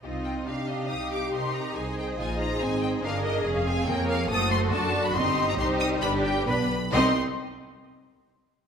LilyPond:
<<
  \new Staff \with { instrumentName = "Violin section" } { \time 4/4 \key c \minor \tempo 4 = 140 r8 g''8 f''8 ees''8 ees'''8 d'''8 c'''8 bes''8 | aes''8 g''8 aes''8 bes''8 aes''8 g''8 f''8 ees''8 | r8 aes''8 g''8 f''8 ees'''8 c'''8 a''8. b''16 | c'''8. bes''16 c'''8 ees'''8 b''8 g''8 b''4 |
c'''8 r2. r8 | }
  \new Staff \with { instrumentName = "Violin section" } { \time 4/4 \key c \minor << { ees''4 f''2 ees''4 | ees''2 ees''2 | f''4 des''4 c''4 d''4 | ees''4 c''4 d''4 d''8 r8 |
ees''8 r2. r8 | } \\ { g'8 f'8 g'4 g'4 bes'4 | c''2. bes'4 | aes'2 a'2 | g'4 g'4 b'4 g'8 r8 |
g'8 r2. r8 | } >> }
  \new Staff \with { instrumentName = "Cello section" } { \time 4/4 \key c \minor f'4 ees'4 g'2 | aes'4 f'4 ees'4 bes'4 | aes'4 bes'4 a'4 fis'4 | ees'2 g'4 b'8 r8 |
c,8 r2. r8 | }
  \new Staff \with { instrumentName = "Viola section" } { \time 4/4 \key c \minor << { ees'4 g'2. | aes'1~ | aes'2 fis'2 | ees'4 ees'4 d'4 d'8 r8 |
ees'8 r2. r8 | } \\ { c'4 d'4 ees'2~ | ees'4 ees'4 c'4 d'4 | des'8 c'8 bes4 a4 d'4 | c'4 g2 b8 r8 |
c'8 r2. r8 | } >> }
  \new Staff \with { instrumentName = "Double bass section" } { \clef bass \time 4/4 \key c \minor c,4 c4 c,4 c4 | c,4 bes,,4 aes,,4 g,,4 | f,,4 f,4 fis,,4 fis,4 | g,,4 c,4 g,,4 b,,4 |
c,8 r2. r8 | }
>>